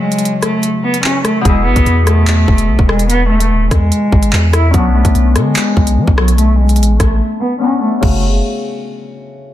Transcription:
Already playing: harp C#3 F#3 F#4
0.01 cello G#3
0.12 closed hi-hat
0.19 closed hi-hat
0.25 closed hi-hat
0.43 cello A3, cross-stick, closed hi-hat
0.63 closed hi-hat
0.84 cello B3
0.94 closed hi-hat
1.04 cello C#4, clap
1.25 cello A3, cross-stick, closed hi-hat
1.41 harp B2 G#4
1.45 808-style bass E1, cello G#3, harp E4, kick, closed hi-hat
1.66 808-style bass G#1, cello B3
1.76 808-style bass G#1, kick, closed hi-hat
1.86 808-style bass E2, closed hi-hat
2.07 cello A3, cross-stick, closed hi-hat
2.27 clap, closed hi-hat
2.48 808-style bass E1, kick
2.58 closed hi-hat
2.69 808-style bass B1
2.79 808-style bass E1, kick
2.89 cello G#3, cross-stick
2.99 closed hi-hat
3.10 cello B3, closed hi-hat
3.30 cello A3
3.40 closed hi-hat
3.51 808-style bass D1
3.61 808-style bass E1
3.71 808-style bass E2, cello G#3, kick, cross-stick, closed hi-hat
3.92 closed hi-hat
4.12 808-style bass G#1, kick
4.23 closed hi-hat
4.33 808-style bass E2, clap
4.53 cello E4, cross-stick, closed hi-hat
4.71 808-style bass B1, cello F#3, harp B3 C#4, kick, closed hi-hat
4.78 harp D4
4.95 cello A3
5.05 808-style bass B1, kick, closed hi-hat
5.15 808-style bass B1, closed hi-hat
5.36 808-style bass D3, cello G#3, cross-stick, closed hi-hat
5.56 clap, closed hi-hat
5.77 808-style bass B1, kick
5.87 closed hi-hat
5.97 808-style bass F#3
6.07 808-style bass B1, kick
6.18 cello F#3, cross-stick
6.28 closed hi-hat
6.38 cello A3, closed hi-hat
6.59 cello G#3
6.69 closed hi-hat
6.76 808-style bass A1, closed hi-hat
6.83 closed hi-hat
7.00 808-style bass A1, cello A3, kick, cross-stick, closed hi-hat
7.41 cello B3
7.59 harp B3 C#4 D4, cello C#4
7.82 cello A3
8.01 808-style bass F#1, harp C#3 A3 F#4, cello A3, kick, crash

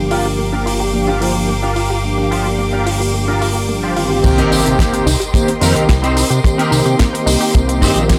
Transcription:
Already playing: analog synth bass G1, analog polysynth F3 A#3 D4 G4, violin section A#4 F5 G5 D6
0.11 clean electric guitar F4 G4 A#4, synth arpeggio sound F4, open hi-hat
0.25 synth arpeggio sound G4
0.38 synth arpeggio sound A#3, muted clean electric guitar stroke
0.52 synth arpeggio sound D4, clean electric guitar F4 G4 A#4
0.66 synth arpeggio sound F4, open hi-hat
0.80 synth arpeggio sound G4
0.93 analog polysynth F3 A#3 D4 G4, synth arpeggio sound A#3
1.07 synth arpeggio sound D4, clean electric guitar F4 G4 A#4
1.21 analog polysynth F3 A#3 D4 C5, synth arpeggio sound F4, open hi-hat
1.35 analog polysynth F3 A#3 D4 G4, synth arpeggio sound G4
1.49 synth arpeggio sound A#3
1.62 synth arpeggio sound D4, clean electric guitar F4 G4 A#4
1.76 synth arpeggio sound F4, open hi-hat
1.90 synth arpeggio sound G4
2.03 analog polysynth F3 A#3 D4 G4, synth arpeggio sound A#3
2.18 synth arpeggio sound D4
2.31 clean electric guitar F4 G4 C5, synth arpeggio sound F4, open hi-hat
2.46 synth arpeggio sound G4
2.58 synth arpeggio sound A#3, muted clean electric guitar stroke
2.73 synth arpeggio sound D4, clean electric guitar F4 G4 A#4
2.86 synth arpeggio sound F4, open hi-hat
3.01 synth arpeggio sound G4, open hi-hat
3.14 synth arpeggio sound A#3
3.27 synth arpeggio sound D4, clean electric guitar F4 G4 A#4
3.41 synth arpeggio sound F4, open hi-hat
3.55 synth arpeggio sound G4
3.69 synth arpeggio sound A#3
3.83 synth arpeggio sound D4, clean electric guitar F4 G4 C5
3.96 analog polysynth D#3 A#3 C4 G4, synth arpeggio sound F4, open hi-hat
4.11 synth arpeggio sound G4
4.23 analog synth bass C2, analog polysynth D#3 A#3 C4 G4, synth arpeggio sound A#3, violin section A#4 D#5 G5 C6, kick, closed hi-hat, crash, tambourine, impact
4.38 clean electric guitar C4 D#4 G4 A#4, synth arpeggio sound C4, closed hi-hat, tambourine
4.51 analog synth bass C2, synth arpeggio sound D#4, open hi-hat, tambourine
4.65 analog synth bass C3, synth arpeggio sound G4, closed hi-hat, tambourine
4.79 synth arpeggio sound A#3, kick, snare, closed hi-hat, tambourine
4.93 synth arpeggio sound C4, muted clean electric guitar stroke, closed hi-hat, tambourine
5.06 analog synth bass C2, synth arpeggio sound D#4, muted clean electric guitar stroke, open hi-hat, tambourine
5.20 synth arpeggio sound G4, closed hi-hat, tambourine
5.34 analog polysynth D#3 A#3 C4 G4, synth arpeggio sound A#3, kick, closed hi-hat, tambourine
5.48 synth arpeggio sound C4, closed hi-hat, tambourine
5.61 analog synth bass F2, analog polysynth D#3 A#3 C4 C5, clean electric guitar C4 D#4 G4 A#4, synth arpeggio sound D#4, open hi-hat, tambourine
5.75 analog synth bass C2, analog polysynth D#3 A#3 C4 G4, synth arpeggio sound G4, closed hi-hat, tambourine
5.89 analog synth bass C2, synth arpeggio sound A#3, kick, snare, closed hi-hat, tambourine
6.03 clean electric guitar C4 D#4 G4 C5, synth arpeggio sound C4, closed hi-hat, tambourine
6.16 synth arpeggio sound D#4, open hi-hat, tambourine
6.30 analog synth bass C3, synth arpeggio sound G4, closed hi-hat, tambourine
6.43 analog polysynth D#3 A#3 C4 G4, synth arpeggio sound A#3, kick, closed hi-hat, tambourine
6.58 clean electric guitar C4 D#4 G4 A#4, synth arpeggio sound C4, closed hi-hat, tambourine
6.71 analog synth bass C2, synth arpeggio sound D#4, open hi-hat, tambourine
6.85 analog synth bass C3, synth arpeggio sound G4, closed hi-hat, tambourine
6.99 synth arpeggio sound A#3, kick, snare, closed hi-hat, tambourine
7.13 synth arpeggio sound C4, muted clean electric guitar stroke, closed hi-hat, tambourine
7.26 analog synth bass C2, synth arpeggio sound D#4, muted clean electric guitar stroke, open hi-hat, tambourine
7.41 synth arpeggio sound G4, open hi-hat, tambourine
7.54 analog synth bass C2, synth arpeggio sound A#3, kick, closed hi-hat, tambourine
7.68 synth arpeggio sound C4, closed hi-hat, tambourine
7.81 analog synth bass G2, clean electric guitar C4 D#4 G4 C5, synth arpeggio sound D#4, kick, open hi-hat, tambourine
7.96 analog synth bass A#1, synth arpeggio sound G4, closed hi-hat, tambourine
8.09 synth arpeggio sound A#3, kick, snare, closed hi-hat, tambourine

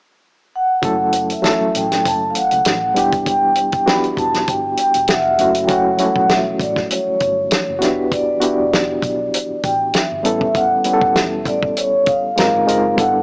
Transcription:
0.56 vibraphone F#5
0.82 fingered electric bass F#1, reed electric piano F#3 A3 C#4 E4 A4, kick, closed hi-hat
1.12 closed hi-hat
1.30 vibraphone E5, closed hi-hat
1.42 reed electric piano F#3 A3 C#4 E4 A4, snare, closed hi-hat
1.61 muted fingered electric bass stroke
1.75 fingered electric bass A1, vibraphone G5, closed hi-hat
1.92 snare, closed hi-hat
2.05 fingered electric bass F#1, vibraphone A5, kick, closed hi-hat
2.30 vibraphone F5
2.35 vibraphone F#5, closed hi-hat
2.51 fingered electric bass C#2, closed hi-hat
2.65 fingered electric bass A1, snare, closed hi-hat
2.94 fingered electric bass E1, reed electric piano G3 B3 D4 E4 G4, vibraphone G5, closed hi-hat
3.12 kick, closed hi-hat
3.26 vibraphone G5, kick, closed hi-hat
3.55 closed hi-hat
3.72 kick, closed hi-hat
3.86 reed electric piano B3 D4 E4 F#4 G4, vibraphone B5, snare, closed hi-hat
4.04 closed hi-hat
4.17 fingered electric bass E1, vibraphone A5, kick, closed hi-hat
4.34 snare, closed hi-hat
4.48 fingered electric bass G1, vibraphone G5, kick, closed hi-hat
4.77 vibraphone G5, closed hi-hat
4.94 fingered electric bass E1, closed hi-hat
5.08 fingered electric bass B1, vibraphone E5, snare, closed hi-hat
5.38 fingered electric bass F#1, reed electric piano F#3 A3 C#4 E4 F#4, vibraphone E5, closed hi-hat
5.54 closed hi-hat
5.64 reed electric piano F#3 A3, vibraphone G5
5.68 fingered electric bass F#1, reed electric piano C#4 E4 F#4, vibraphone F#5, kick, closed hi-hat
5.97 reed electric piano F#3 G3 C#4 E4 F#4, vibraphone F#5, closed hi-hat
6.05 reed electric piano A3
6.16 fingered electric bass B1, kick
6.29 vibraphone E5, snare, closed hi-hat
6.60 fingered electric bass A1, vibraphone D5, kick, closed hi-hat
6.76 kick, snare
6.90 vibraphone C#5, closed hi-hat
7.07 muted fingered electric bass stroke
7.20 fingered electric bass G1, kick, closed hi-hat
7.51 snare, closed hi-hat
7.68 fingered electric bass F#1
7.79 fingered electric bass E1, reed electric piano B3 D4 E4 F#4 G4, snare, closed hi-hat
7.83 vibraphone B4
8.11 vibraphone D5, kick, closed hi-hat
8.40 reed electric piano B3 D4 E4 F#4 G4, closed hi-hat
8.59 fingered electric bass E1
8.73 snare, closed hi-hat
9.02 fingered electric bass B1, kick, closed hi-hat
9.34 closed hi-hat
9.50 muted fingered electric bass stroke
9.63 fingered electric bass A1, vibraphone G5, kick, closed hi-hat
9.94 vibraphone E5, snare, closed hi-hat
10.12 fingered electric bass G1
10.23 fingered electric bass A1, reed electric piano G3 B3 C#4 E4 A4, vibraphone E5, closed hi-hat
10.41 kick
10.55 vibraphone F#5, kick, closed hi-hat
10.84 reed electric piano G3 B3 C#4 E4 G4, vibraphone F#5, closed hi-hat
10.93 reed electric piano A4
11.01 fingered electric bass E1, kick
11.16 vibraphone E5, snare, closed hi-hat
11.45 fingered electric bass A1, vibraphone D5, kick, closed hi-hat
11.63 kick
11.77 vibraphone C#5, closed hi-hat
12.06 vibraphone F5, kick, closed hi-hat
12.36 fingered electric bass G#1, reed electric piano G#3 C4 D#4 F4 A#4, snare, closed hi-hat
12.54 fingered electric bass G1
12.67 fingered electric bass F#1, reed electric piano G#3 C4 D#4 F4 A#4, closed hi-hat
12.97 fingered electric bass G1, reed electric piano G3 B3 D4 E4 A4, vibraphone F#5, kick, closed hi-hat

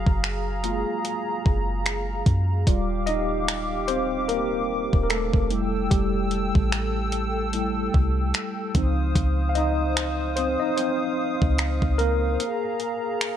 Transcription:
Already playing: tine electric piano F#3 F#4, analog synth pad G#4 F5 A#5
0.07 808-style bass F#1, kick
0.24 finger snap, closed hi-hat
0.64 tine electric piano G#3 A#3 F4, closed hi-hat
1.05 closed hi-hat
1.46 808-style bass F#1, kick
1.86 finger snap, closed hi-hat
2.26 808-style bass F#2, kick, closed hi-hat
2.67 808-style bass D#1, tine electric piano G3 F4 D5, analog synth pad G4 F5 D6, kick, closed hi-hat
3.06 tine electric piano D#4 D#5, closed hi-hat
3.48 finger snap, closed hi-hat
3.88 tine electric piano C4 C5, closed hi-hat
4.28 tine electric piano A#3 A#4, closed hi-hat
4.93 808-style bass D#1, kick
5.03 tine electric piano A#4
5.09 tine electric piano A3 A4, finger snap, closed hi-hat
5.34 808-style bass F1, kick
5.50 tine electric piano G3 A3 E4, analog synth pad A4 G5 E6, closed hi-hat
5.90 808-style bass F1, tine electric piano G3 G4, kick, closed hi-hat
6.31 closed hi-hat
6.55 808-style bass A1, kick
6.72 finger snap, closed hi-hat
7.12 closed hi-hat
7.53 tine electric piano G3 A3 E4, closed hi-hat
7.94 808-style bass C2, kick
8.34 finger snap, closed hi-hat
8.75 808-style bass C#2, tine electric piano F3 C4 D#4, analog synth pad C5 F5 D#6, kick, closed hi-hat
9.16 808-style bass C#2, kick, closed hi-hat
9.49 tine electric piano F5
9.55 tine electric piano D#4 D#5, closed hi-hat
9.97 finger snap, closed hi-hat
10.36 tine electric piano C4 C5, closed hi-hat
10.60 tine electric piano D#4 D#5
10.77 tine electric piano C4 C5, closed hi-hat
11.42 808-style bass C#2, kick
11.58 finger snap, closed hi-hat
11.82 808-style bass C#2, kick
11.98 tine electric piano A#3 A#4, closed hi-hat
12.40 analog synth pad G#4 A#5, closed hi-hat
12.80 closed hi-hat
13.21 finger snap, closed hi-hat

